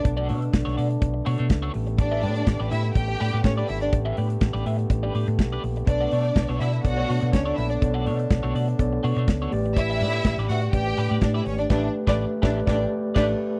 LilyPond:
<<
  \new Staff \with { instrumentName = "String section" } { \time 4/4 \key a \mixolydian \tempo 4 = 124 r1 | <d' d''>4. <e' e''>8 <g' g''>4 <cis' cis''>16 <d' d''>16 <e' e''>16 <d' d''>16 | r1 | <d' d''>4. <e' e''>8 <fis' fis''>4 <cis' cis''>16 <d' d''>16 <e' e''>16 <d' d''>16 |
r1 | <e' e''>4. <fis' fis''>8 <g' g''>4 <d' d''>16 <e' e''>16 <cis' cis''>16 <d' d''>16 | <d' d''>8 r16 <d' d''>8 r16 <d' d''>8 <d' d''>8 r8 <d' d''>8 r8 | }
  \new Staff \with { instrumentName = "Tine electric piano" } { \time 4/4 \key a \mixolydian r1 | r1 | r1 | <b a' b' d''>4. r8 <b a' cis'' d''>4. r8 |
<b a' cis'' d''>4. r8 <b a' cis'' d''>4. <a g' b' d''>8~ | <a g' b' d''>4 r4 <a g' b' d''>4. r8 | <a g' b'>8 r16 <a g' b'>8 r16 <a g' b' d''>8 <a g' b' d''>8 r8 <a g' b' d''>8 r8 | }
  \new Staff \with { instrumentName = "Clean electric guitar" } { \time 4/4 \key a \mixolydian r16 <a d' fis' d''>16 <a d' fis' cis''>16 r8 <a d' fis' cis''>16 <a d' fis' d''>16 r8. <a d' fis' cis''>16 <a d' fis' cis''>16 r16 <a d' fis' cis''>16 r8 | r16 <d' g' b' e''>16 <d' g' b' d''>16 r8 <d' g' b' d''>16 <d' g' b' e''>16 r8. <d' g' b' d''>16 <d' g' b' d''>16 r16 <d' g' b' d''>16 r8 | r16 <d' g' b' e''>16 <d' g' b' d''>16 r8 <d' g' b' d''>16 <d' g' b' e''>16 r8 <d' g' b' d''>16 <d' g' b' d''>16 r8 <d' g' b' d''>16 r8 | r16 <a d' fis' d''>16 <a d' fis' cis''>16 r8 <a d' fis' cis''>16 <a d' fis' d''>16 r8 <a d' fis' cis''>16 <a d' fis' cis''>16 r8 <a d' fis' cis''>16 r8 |
r16 <a d' fis' d''>16 <a d' fis' cis''>16 r8 <a d' fis' cis''>16 <a d' fis' d''>16 r8. <a d' fis' cis''>16 <a d' fis' cis''>16 r16 <a d' fis' cis''>16 r8 | r16 <d' g' b' e''>16 <d' g' b' d''>16 r8 <d' g' b' d''>16 <d' g' b' e''>16 r8. <d' g' b' d''>16 <d' g' b' d''>16 r16 <d' g' b' d''>16 r8 | <d' g' b' e''>8 r16 <d' g' b' d''>8 r16 <d' g' b' e''>8 <d' g' b' d''>8 r8 <d' g' b' d''>8 r8 | }
  \new Staff \with { instrumentName = "French horn section" } { \time 4/4 \key a \mixolydian << { <d d'>2.~ <d d'>8 <d g'>8~ | <d g'>1~ | <d g'>1 | <d d'>1~ |
<d d'>2.~ <d d'>8 <d g'>8~ | <d g'>1~ | <d g'>1 | } \\ { <a b>1~ | <a b>1~ | <a b>1~ | <a b>1~ |
<a b>1~ | <a b>1~ | <a b>1 | } >> }
  \new Staff \with { instrumentName = "Fingered electric bass" } { \clef bass \time 4/4 \key a \mixolydian b,,8 b,8 b,,16 b,,16 b,8 b,,8 b,16 b,16 cis,8 a,,8~ | a,,8 a,8 a,,16 a,,16 a,8 a,,8 a,16 a,16 a,8 gis,,8 | a,,8 a,8 a,,16 a,,16 a,8 a,,8 a,16 a,16 b,,8 ais,,8 | b,,8 b,8 b,,16 b,,16 b,8 b,,8 b,16 b,16 cis,8 ais,,8 |
b,,8 b,8 b,,16 b,,16 b,8 b,,8 b,16 b,16 cis,8 a,,8~ | a,,8 a,8 a,,16 a,,16 a,8 a,,8 a,16 a,16 a,8 gis,,8 | a,,8 r16 a,,8 r16 a,,8 a,,8 r8 a,,8 r8 | }
  \new DrumStaff \with { instrumentName = "Drums" } \drummode { \time 4/4 <hh bd>8 hho16 hh16 <hh bd sn>16 sn16 hho16 hh16 <hh bd>8 hho16 hh16 <hh bd sn>8 hho16 hh16 | <hh bd>8 hho16 hh16 <hh bd sn>16 sn16 hho16 hh16 <hh bd>8 hho8 <hh bd sn>8 hho16 hh16 | <hh bd>8 hho16 hh16 <hh bd sn>16 sn16 hho16 hh16 <hh bd>8 hho16 hh16 <hh bd sn>8 hho16 hh16 | <hh bd>8 hho16 hh16 <hh bd sn>16 sn16 hho16 hh16 <hh bd>8 hho16 hh16 <hh bd sn>8 hho16 hh16 |
<hh bd>8 hho16 hh16 <hh bd sn>8 hho16 hh16 <hh bd>8 hho16 hh16 <hh bd sn>8 hho16 hh16 | <hh bd>8 hho16 hh16 <hh bd sn>16 sn16 hho16 hh16 <hh bd>8 hho16 hh16 <hh bd sn>8 hho16 hh16 | <cymc bd sn>8. <bd sn>16 r8 <bd sn>8 <bd sn>4 <cymc bd sn>4 | }
>>